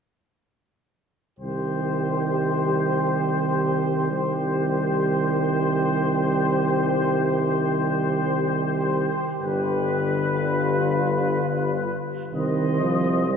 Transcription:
1.39 C2 D#3 G3 G4 C5
4.10 C2 D#3 G3 G4 C5
9.40 G1 D3 G3 B4
10.31 F4
12.33 C2 D#3 C4 C5 D#5
12.81 F3
13.29 G3 C4 C5 D#5

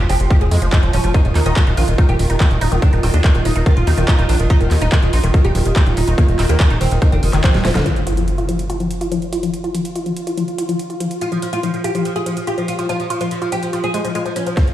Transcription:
Already playing: F4
0.09 F1 F3 G4, open hi-hat
0.20 F1 F3, closed hi-hat
0.30 F3 G4, kick, closed hi-hat
0.41 F1 F3 G#4, closed hi-hat
0.51 F2 F3 G#3, open hi-hat
0.62 F1 F3, closed hi-hat
0.72 G#3 F4, kick, clap, closed hi-hat
0.83 F1 F3, closed hi-hat
0.93 D#1 F3 C#4, open hi-hat
1.04 F1 F3, closed hi-hat
1.14 D#3 D#4, kick, closed hi-hat
1.25 D#1 D#3, closed hi-hat
1.35 D#2 D#3 D#4, clap, open hi-hat
1.46 D#1 D#3 D#4, closed hi-hat
1.56 D#3, kick, clap, closed hi-hat
1.67 D#1 D#3 D#4, closed hi-hat
1.77 A#1 D#3 F4, open hi-hat
1.88 D#1 D#3, closed hi-hat
1.98 D#3 D#4, kick, closed hi-hat
2.09 D#1 D#3 G4, closed hi-hat
2.19 D#1 D#3, open hi-hat
2.30 D#1 D#3 D#4, closed hi-hat
2.40 D#3 F4, kick, clap, closed hi-hat
2.51 D#1 D#3, closed hi-hat
2.61 D#1 D#4, open hi-hat
2.72 D#1 D#3, closed hi-hat
2.82 D4, kick, closed hi-hat
2.93 D#1 D#3 D#4, closed hi-hat
3.03 D#1 D#3 C4, open hi-hat
3.14 D#2 C4 D4, closed hi-hat
3.24 D#3 D#4, kick, clap, closed hi-hat
3.35 D#1 D#3, closed hi-hat
3.45 D#1 D#4, open hi-hat
3.56 D#1 D#3 D#4, closed hi-hat
3.66 D#3 F4, kick, closed hi-hat
3.77 D#1 F4, closed hi-hat
3.87 D#2 D#3 D#4, open hi-hat
3.98 D#1 D#3, closed hi-hat
4.08 D#4, kick, clap, closed hi-hat
4.19 D#1 D#3 D#4, closed hi-hat
4.29 A#1 D#3 D4, open hi-hat
4.40 D#1 D#3, closed hi-hat
4.50 D#4, kick, closed hi-hat
4.61 D#1 D#3, closed hi-hat
4.71 D#2 D#3, clap, open hi-hat
4.82 D#1 D#4, closed hi-hat
4.92 D#3, kick, clap, closed hi-hat
5.03 D#1 D#3, closed hi-hat
5.13 A#1 D#4 F4, open hi-hat
5.24 D#1 D#3, closed hi-hat
5.34 D#3, kick, closed hi-hat
5.45 D#1 D#4 G4, closed hi-hat
5.55 D#1 D#3, open hi-hat
5.65 D#1 D#3, closed hi-hat
5.76 D#4 F4, kick, clap, closed hi-hat
5.86 D#1 D#3, closed hi-hat
5.97 D#1 D#4, open hi-hat
6.07 D#1 D#3 D#4, closed hi-hat
6.18 D#3 A#3, kick, closed hi-hat
6.28 D#1 D#3, closed hi-hat
6.39 D#1 D#3 C4 D#4, clap, open hi-hat
6.49 D#2 D#3 A#3 C4, closed hi-hat
6.60 D#3, kick, clap, closed hi-hat
6.70 D#1 D#3 D#4, closed hi-hat
6.81 D#1 D#3 C4, open hi-hat
6.91 D#1 D#3, closed hi-hat
7.02 D#3 D#4, kick, closed hi-hat
7.12 F1 D#3 D4, closed hi-hat
7.23 F1 D#3, open hi-hat
7.33 F1 D#3, clap, closed hi-hat
7.44 F3 C4, kick, clap, closed hi-hat
7.54 D#1 D#3 G3, snare, closed hi-hat
7.65 D#1 F3 A3, snare, open hi-hat
7.75 D#1 D3 D#3, snare, closed hi-hat
7.86 F3 F4, closed hi-hat, impact
7.96 closed hi-hat
8.07 F4, closed hi-hat
8.17 F3, closed hi-hat
8.28 closed hi-hat
8.38 F4, closed hi-hat
8.49 F3, closed hi-hat
8.59 closed hi-hat
8.70 F4, closed hi-hat
8.80 F3, closed hi-hat
8.91 closed hi-hat
9.01 F4, closed hi-hat
9.12 F3, closed hi-hat
9.22 closed hi-hat
9.33 F4, closed hi-hat
9.43 F3, closed hi-hat
9.54 closed hi-hat
9.64 F4, closed hi-hat
9.75 F3, closed hi-hat
9.85 closed hi-hat
9.96 F4, closed hi-hat
10.06 F3, closed hi-hat
10.17 closed hi-hat
10.27 F4, closed hi-hat
10.37 F3, closed hi-hat
10.48 closed hi-hat
10.58 F4, closed hi-hat
10.69 F3, closed hi-hat
10.79 closed hi-hat
10.90 F4, closed hi-hat
11.00 F3, closed hi-hat
11.11 closed hi-hat
11.21 F4, closed hi-hat
11.32 F3, closed hi-hat
11.42 F3, closed hi-hat
11.53 F4, closed hi-hat
11.63 F3, closed hi-hat
11.74 F3, closed hi-hat
11.84 F4 G4, closed hi-hat
11.95 F3, closed hi-hat
12.05 F3, closed hi-hat
12.16 F4 G#4, closed hi-hat
12.26 F3, closed hi-hat
12.37 F3, closed hi-hat
12.47 F4 G4, closed hi-hat
12.58 F3, closed hi-hat
12.68 F4, closed hi-hat
12.79 F3 F4, closed hi-hat
12.89 F3 F4, closed hi-hat
13.00 F3, closed hi-hat
13.10 F3 F4, closed hi-hat
13.21 F3 F4, closed hi-hat
13.31 F3, closed hi-hat
13.42 F3 F4, closed hi-hat
13.52 F3 G4, closed hi-hat
13.63 F3, closed hi-hat
13.73 F3 F4, closed hi-hat
13.84 F3 G#4, closed hi-hat
13.94 F3 G#3, closed hi-hat
14.05 F3, closed hi-hat
14.15 G#3 F4, closed hi-hat
14.26 F3, closed hi-hat
14.36 F3 C#4, closed hi-hat
14.47 F3, closed hi-hat
14.57 F3, kick, snare, closed hi-hat, riser
14.68 closed hi-hat

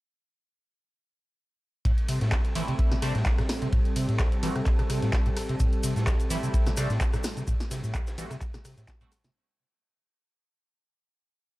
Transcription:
1.85 A2 G3 C4 A4, kick, closed hi-hat, ride
1.98 closed hi-hat
2.08 C3, open hi-hat, ride
2.21 A2, snare, closed hi-hat
2.31 A1, kick, cross-stick, snare, clap, closed hi-hat, ride
2.45 closed hi-hat
2.55 E3 G3 A3 C4 E4, open hi-hat, ride
2.68 C3, closed hi-hat
2.79 kick, closed hi-hat, ride
2.92 B2, cross-stick, snare, closed hi-hat
3.02 C3 G3 A3 C4 D4, cross-stick, open hi-hat, ride
3.15 A2, snare, closed hi-hat
3.26 kick, snare, clap, closed hi-hat, ride
3.38 A2, cross-stick, snare, closed hi-hat
3.49 cross-stick, snare, open hi-hat, ride
3.62 C3, closed hi-hat
3.72 A2, kick, closed hi-hat, ride
3.85 closed hi-hat
3.96 C3, open hi-hat, ride
4.09 A2, closed hi-hat
4.19 A1, kick, cross-stick, snare, clap, closed hi-hat, ride
4.32 closed hi-hat
4.43 E3 G3 A3 C4 F#4, open hi-hat, ride
4.56 C3, cross-stick, closed hi-hat
4.66 kick, clap, closed hi-hat, ride
4.79 B2, cross-stick, closed hi-hat, ride
4.90 C3, cross-stick, open hi-hat, ride
5.02 A2, snare, closed hi-hat
5.13 kick, snare, clap, closed hi-hat, ride
5.26 A2, closed hi-hat
5.37 cross-stick, open hi-hat, ride
5.49 C3, closed hi-hat
5.60 A2, kick, closed hi-hat, ride, cabasa
5.73 closed hi-hat
5.83 C3, open hi-hat, ride, cabasa
5.96 A2, snare, closed hi-hat, cabasa
6.07 A1, kick, cross-stick, snare, clap, closed hi-hat, ride, cabasa
6.20 closed hi-hat, cabasa
6.30 E3 G3 A3 C4 E4, open hi-hat, ride, cabasa
6.43 C3, closed hi-hat, cabasa
6.54 kick, closed hi-hat, ride, cabasa
6.66 B2, cross-stick, snare, closed hi-hat, cabasa
6.77 C3 G3 A3 C4 D4, cross-stick, open hi-hat, ride, cabasa
6.90 A2, snare, closed hi-hat, cabasa
7.00 kick, snare, clap, closed hi-hat, ride, cabasa
7.13 A2, cross-stick, snare, closed hi-hat, cabasa
7.24 cross-stick, snare, open hi-hat, ride, cabasa
7.37 C3, closed hi-hat, cabasa
7.47 A2, kick, closed hi-hat, ride, cabasa
7.60 snare, closed hi-hat, cabasa
7.71 C3, snare, open hi-hat, ride, cabasa
7.84 A2, closed hi-hat, cabasa
7.94 A1, kick, cross-stick, clap, closed hi-hat, ride, cabasa
8.07 snare, closed hi-hat, ride, cabasa
8.18 E3 G3 A3 C4 F#4, open hi-hat, ride, cabasa
8.31 C3, cross-stick, closed hi-hat, ride, cabasa
8.41 kick, clap, closed hi-hat, ride, cabasa
8.54 B2, cross-stick, snare, closed hi-hat, ride, cabasa
8.65 C3, cross-stick, open hi-hat, ride, cabasa
8.77 A2, snare, closed hi-hat, cabasa
8.88 kick, snare, clap, closed hi-hat, ride, cabasa
9.01 A2 G3 A3 C4 F#4, closed hi-hat, cabasa
9.12 cross-stick, open hi-hat, ride, cabasa
9.24 C3, snare, closed hi-hat, cabasa

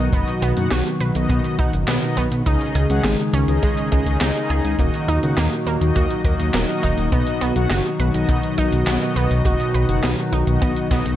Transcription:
Already playing: B2 D#3 F#3 D#4 F#4
0.13 F#1 B2 B3 D#4 F#4 D#5, kick, closed hi-hat
0.28 closed hi-hat
0.42 B1 B3, closed hi-hat
0.57 F#1 B2 B3 D#4 F#4 F#5, closed hi-hat
0.71 B1 F#4, snare, clap, closed hi-hat
0.86 closed hi-hat
1.00 B1 B4, closed hi-hat
1.15 B1 B2 B3 D#4 F#4 D#5, closed hi-hat
1.29 B1 B3, kick, closed hi-hat
1.44 closed hi-hat
1.59 B1 B2 B3 D#4 F#4 F#5, kick, closed hi-hat
1.73 F#1, closed hi-hat
1.88 B1 B3, snare, clap, closed hi-hat
2.02 B2 B3 D#4 F#4 D#5, closed hi-hat
2.17 B1 B3, kick, closed hi-hat
2.31 B1, closed hi-hat
2.46 C#2 C#3 G#3 C#4 D#4 G#4 D#5, kick, closed hi-hat
2.61 closed hi-hat
2.75 C#2 G#4, closed hi-hat
2.90 C#2 C#3 C#4 D#4 G#4 F#5, closed hi-hat
3.04 G#1 G#3, snare, clap, closed hi-hat
3.33 C#2 C#4, closed hi-hat
3.48 C#2 C#3 C#4 D#4 G#4 D#5, closed hi-hat
3.63 C#2 G#3, kick, closed hi-hat
3.77 closed hi-hat
3.92 C#2 C#3 G#3 C#4 D#4 G#4 D#5, kick, closed hi-hat
4.06 C#2, closed hi-hat
4.21 C#2 D#4, snare, clap, closed hi-hat
4.35 C#3 C#4 D#4 G#4 D#5, closed hi-hat
4.50 C#2 G#4, closed hi-hat
4.64 C#2, closed hi-hat
4.79 D#1 A#2 D#3 F#3 A#3 D#4 F#4 D#5, kick, closed hi-hat
4.94 closed hi-hat
5.08 D#2 D#4, closed hi-hat
5.23 C#2 D#3 A#3 D#4 F#4 F#5, closed hi-hat
5.38 D#2 A#3, snare, clap, closed hi-hat
5.66 D#2 A#3, closed hi-hat
5.81 D#2 D#3 A#3 D#4 F#4 D#5, closed hi-hat
5.96 D#2 F#4, kick, closed hi-hat
6.10 closed hi-hat
6.25 D#2 D#3 A#3 D#4 F#4 A#4 D#5, kick, closed hi-hat
6.39 D#2, closed hi-hat
6.54 D#1 A#3, snare, clap, closed hi-hat
6.68 D#3 A#3 D#4 F#4 D#5, closed hi-hat
6.83 D#1 D#4, kick, closed hi-hat
6.98 D#1, closed hi-hat
7.12 B1 B2 D#3 B3 D#4 F#4 D#5, kick, closed hi-hat
7.27 closed hi-hat
7.41 B1 B3, closed hi-hat
7.56 B1 B2 B3 D#4 F#4 F#5, closed hi-hat
7.70 F#1 F#4, snare, clap, closed hi-hat
8.00 B1 B4, closed hi-hat
8.14 B1 B2 B3 D#4 F#4 D#5, closed hi-hat
8.29 B1 B3, kick, closed hi-hat
8.43 closed hi-hat
8.58 B1 B2 B3 D#4 F#4 D#5, kick, closed hi-hat
8.72 B1, closed hi-hat
8.87 B1 B3, snare, clap, closed hi-hat
9.02 B2 B3 D#4 F#4 D#5, closed hi-hat
9.16 B1 B3, closed hi-hat
9.31 B1, closed hi-hat
9.45 F#1 B2 B3 D#4 F#4 D#5, kick, closed hi-hat
9.60 closed hi-hat
9.74 B1 B4, closed hi-hat
9.89 F#1 B2 B3 D#4 F#4 F#5, closed hi-hat
10.03 B1 B3, snare, clap, closed hi-hat
10.18 closed hi-hat
10.33 B1 D#4, closed hi-hat
10.47 B1 B2 B3 D#4 F#4 D#5, closed hi-hat
10.62 B1 B3, kick, closed hi-hat
10.76 closed hi-hat
10.91 B1 B2 B3 D#4 F#4 D#5, kick, snare, closed hi-hat
11.05 B1, closed hi-hat

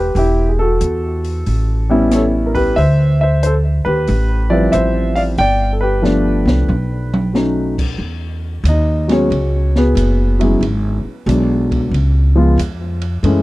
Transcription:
Already playing: E1 G4 B4
0.15 E1 E4 G4, open hi-hat
0.49 G#4
0.59 F#4 A4
0.81 E2, closed hi-hat
1.24 open hi-hat
1.46 A1, open hi-hat
1.89 G3 B3 C#4 E4
2.11 C#5, cross-stick, snare, closed hi-hat
2.15 A4
2.46 A#4
2.55 G4 B4, kick, open hi-hat
2.76 D2 C5 E5, open hi-hat
3.21 C5 E5
3.43 A4 C5, closed hi-hat
3.85 D#2 G4 B4
4.07 A1, open hi-hat
4.50 F3 G3 C4 E4 B4 D5
4.72 A1 C5 E5, cross-stick, closed hi-hat
5.16 D5 F5, open hi-hat
5.38 G1 D5 G5, open hi-hat
5.73 A4
5.81 G4 B4
6.02 F3 A3 B3 D4, snare
6.45 C2, snare
6.68 B1, mid tom
7.14 mid tom
7.33 F#3 A3 C#4 D#4, snare
7.78 kick, crash
7.98 E2
8.64 D#2, hi-hat pedal, ride
8.69 D#4 D#5
9.08 F#3 G#3 B3 C#4 F#4, snare, ride
9.12 G#4 C#5
9.30 C#2, ride
9.76 B3 F#4 G#4 B4, snare
9.95 F#1, hi-hat pedal, ride
10.39 F#3 G#3 B3 E4 G#4, ride
10.44 G#3 C#4 E4
10.61 G#1, ride
11.05 muted upright bass stroke
11.26 B1 F#3 G#3 B3 D4, hi-hat pedal, ride
11.71 kick, ride
11.91 C#2, ride
12.36 F3 G#3 B3 F4
12.58 F2, hi-hat pedal, ride
13.02 ride
13.23 F#2 E3 G#3 A3 C#4, ride

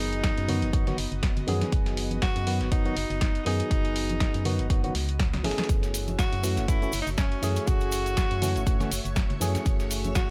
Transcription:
Already playing: F#1 D#3 F#3 B3 D#4 F#4 G#4 D#5
0.13 closed hi-hat
0.24 kick, snare, closed hi-hat
0.38 F#2, closed hi-hat
0.48 D#3 F#3 B3 F#4, closed hi-hat, open hi-hat, low conga
0.62 F#1, closed hi-hat
0.73 D#3 F#3 B3 F#4, kick, closed hi-hat
0.87 D#3 F#3 B3 F#4, snare, closed hi-hat, low conga
0.98 F#1, closed hi-hat, open hi-hat
1.12 F#1, closed hi-hat
1.23 kick, snare, closed hi-hat
1.37 closed hi-hat, low conga
1.47 F#2 D#3 F#3 B3 G#4, closed hi-hat, open hi-hat, high conga
1.61 snare, closed hi-hat, high conga
1.72 F#1, kick, closed hi-hat
1.86 snare, closed hi-hat
1.97 closed hi-hat, open hi-hat
2.11 closed hi-hat, high conga
2.22 F#4, kick, snare, closed hi-hat
2.36 F#2, closed hi-hat
2.46 D#3 F#3 B3 F#4, closed hi-hat, open hi-hat
2.61 F#1, snare, closed hi-hat
2.71 D#3 F#3 B3 D#4 F#4, kick, closed hi-hat
2.85 D#3 F#3 B3 F#4, closed hi-hat
2.96 F#1, closed hi-hat, open hi-hat
3.10 F#1, closed hi-hat
3.21 kick, snare, closed hi-hat
3.35 closed hi-hat
3.45 F#2 D#3 F#3 B3 D#4 G#4, closed hi-hat, open hi-hat
3.60 closed hi-hat
3.71 F#1, kick, closed hi-hat
3.85 closed hi-hat
3.96 closed hi-hat, open hi-hat
4.10 closed hi-hat, high conga
4.20 kick, snare, closed hi-hat
4.34 F#2, closed hi-hat
4.45 D#3 F#3 B3 F#4, closed hi-hat, open hi-hat, low conga
4.59 F#1, closed hi-hat
4.70 D#3 F#3 B3 F#4, kick, closed hi-hat
4.83 F#1 D#3 F#3 B3 F#4, closed hi-hat, low conga
4.95 C#2, snare, closed hi-hat, open hi-hat
5.09 closed hi-hat
5.19 kick, snare, closed hi-hat
5.33 snare, closed hi-hat, low conga
5.44 F#1 E3 A3 C#4 G#4, snare, closed hi-hat, open hi-hat, high conga
5.51 snare, closed hi-hat
5.58 snare, closed hi-hat, high conga
5.64 snare, closed hi-hat
5.69 F#1 A3 F#4 C#5 E5 C#6, kick, closed hi-hat, cabasa
5.83 snare, closed hi-hat, cabasa
5.94 closed hi-hat, open hi-hat, cabasa
6.08 closed hi-hat, high conga, cabasa
6.19 F#4, kick, snare, closed hi-hat, cabasa
6.33 F#2, closed hi-hat
6.43 E3 A3 C#4 F#4, closed hi-hat, open hi-hat, cabasa
6.57 F#1, snare, closed hi-hat, cabasa
6.68 E3 A3 C#4 E4 F#4, kick, closed hi-hat, cabasa
6.82 E3 A3 C#4 F#4, closed hi-hat, cabasa
6.92 F#1, closed hi-hat, open hi-hat, cabasa
7.02 D#4
7.07 F#1, closed hi-hat, cabasa
7.18 C#4, kick, snare, closed hi-hat, cabasa
7.32 closed hi-hat
7.42 F#2 E3 A3 C#4 G#4, closed hi-hat, open hi-hat, cabasa
7.56 closed hi-hat, cabasa
7.67 F#1 F#4, kick, closed hi-hat, cabasa
7.80 closed hi-hat, cabasa
7.92 closed hi-hat, open hi-hat, cabasa
8.06 closed hi-hat, cabasa
8.17 kick, snare, closed hi-hat, cabasa
8.31 F#2, closed hi-hat
8.41 E3 A3 C#4 F#4, closed hi-hat, open hi-hat, low conga, cabasa
8.56 F#1, closed hi-hat, cabasa
8.66 E3 A3 C#4 F#4, kick, closed hi-hat, cabasa
8.80 E3 A3 C#4 F#4, snare, closed hi-hat, low conga, cabasa
8.91 F#1, closed hi-hat, open hi-hat, cabasa
9.05 F#1, closed hi-hat, cabasa
9.16 kick, snare, closed hi-hat, cabasa
9.30 closed hi-hat, low conga
9.40 F#2 E3 A3 C#4 G#4, closed hi-hat, open hi-hat, high conga, cabasa
9.55 snare, closed hi-hat, high conga, cabasa
9.66 F#1, kick, closed hi-hat, cabasa
9.80 snare, closed hi-hat, cabasa
9.91 closed hi-hat, open hi-hat, cabasa
10.04 closed hi-hat, high conga, cabasa
10.15 F#4, kick, snare, closed hi-hat, cabasa

